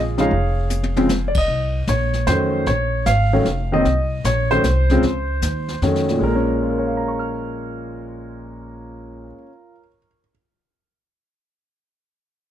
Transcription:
Already playing: A#1 F4 G#4
0.18 C#3 F3 G#3 D#4 G#4 C#5 F5, snare
0.31 F1, brush sweep, kick
0.70 hi-hat pedal, high tom
0.83 high tom
0.97 C#3 F3 G#3 C4, high tom
1.09 snare, hi-hat pedal
1.28 D5
1.34 D#5, kick, ride
1.48 C2, brush sweep
1.87 A#1 C#5, kick, snare, hi-hat pedal
2.13 snare
2.27 F2 D#3 F#3 A3 C#4 C5, kick, snare, hi-hat pedal
2.66 A#1 C#5, brush sweep, kick, snare
3.06 G#1 F5, kick, snare, hi-hat pedal
3.33 D#3 F#3 A3 C#4
3.45 F1, kick, snare
3.72 D#3 F#3 A#3 C4 D#5
3.85 C2, brush sweep, kick, snare
4.24 A#1 C#5, kick, snare, hi-hat pedal
4.51 D#3 F#3 A3 C#4 C5, snare
4.64 C2, kick, snare, hi-hat pedal
4.90 C#3 F3 G#3 C4, snare
5.03 C#2, brush sweep, kick, snare
5.42 D#2, kick, snare, hi-hat pedal
5.68 snare
5.82 F2 D#3 F#3 A3 C#4, kick, snare
5.95 snare
6.09 A#2, snare
6.19 A#1 G#3
6.23 A#3 A#4
6.35 C#4
6.62 F4
6.70 A#4
6.78 C#5
6.87 F5
6.97 A#5
7.08 C#6
7.19 F6

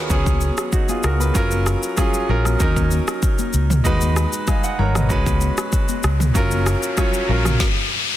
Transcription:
Already playing: D#2 F#3 B3 D#4 F4 F#4 G#4 A#4 B4 C#5 D#5 F5
0.09 C#2 F#3 B3 C#4 G#4, kick, shaker
0.26 kick, high conga, shaker
0.41 high conga, shaker
0.58 cross-stick, shaker
0.73 D#4 F#4, kick, shaker
0.89 F4 G#4, high conga, shaker
1.03 C#2 F#4 A#4, cross-stick, shaker
1.20 G#4 B4, high conga, shaker
1.34 F#1 F#3 C#4 F4 A#4, kick, low conga, shaker
1.51 high conga, shaker
1.66 cross-stick, shaker
1.83 shaker
1.96 F#3 C#4 F4 G#4, kick, cross-stick, low conga, shaker
2.14 shaker
2.28 A#1 F#3 C#4 F4 A#4, low conga
2.45 cross-stick, high conga, shaker
2.59 D#2 F#3 C#4 D#4 A#4, kick, shaker
2.76 kick, high conga, shaker
2.91 high conga, shaker
3.08 cross-stick, shaker
3.23 kick, shaker
3.39 high conga, shaker
3.53 C#2, shaker
3.70 mid tom, high conga, shaker
3.84 D#2 G#3 D#4 F#4 B4, kick, low conga, shaker
4.01 high conga, shaker
4.16 cross-stick, shaker
4.33 shaker
4.47 D#5 F5 G#5, kick, cross-stick, low conga, shaker
4.64 D#5 F#5, shaker
4.79 G#1 A#4 C#5 A#5, low conga
4.95 B4 D#5, cross-stick, mid tom, high conga, shaker
5.09 C#2 G#3 C#4 F#4 B4, kick, riser, shaker
5.26 kick, high conga, shaker
5.41 high conga, shaker
5.58 cross-stick, shaker
5.73 kick, shaker
5.89 high conga, shaker
6.03 C#2, cross-stick, shaker
6.20 mid tom, high conga, shaker
6.34 F#1 F#3 C#4 F4 A#4, kick, low conga, shaker
6.51 high conga, shaker
6.66 cross-stick, shaker
6.83 shaker
6.96 F#3 C#4 F4 C#5, kick, cross-stick, low conga, shaker
7.14 shaker
7.28 A#1 F#3 C#4 F4 A#4, low conga
7.45 cross-stick, mid tom, high conga, shaker
7.60 kick, snare

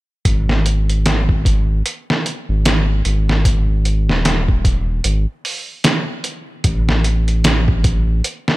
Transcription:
0.25 G#1, kick, closed hi-hat
0.49 snare
0.66 closed hi-hat
0.90 closed hi-hat
1.06 snare, closed hi-hat
1.29 kick
1.45 kick, closed hi-hat
1.86 closed hi-hat
2.10 snare
2.26 closed hi-hat
2.49 G#1
2.65 snare, closed hi-hat
3.05 G#1, closed hi-hat
3.29 snare
3.45 kick, closed hi-hat
3.85 closed hi-hat
4.09 D#1, snare
4.25 snare, closed hi-hat
4.48 kick
4.65 D#1, kick, closed hi-hat
5.04 G#1, closed hi-hat
5.45 open hi-hat
5.84 snare, closed hi-hat
6.24 closed hi-hat
6.64 A1, kick, closed hi-hat
6.89 snare
7.04 closed hi-hat
7.28 closed hi-hat
7.44 snare, closed hi-hat
7.68 kick
7.84 kick, closed hi-hat
8.24 closed hi-hat
8.48 snare

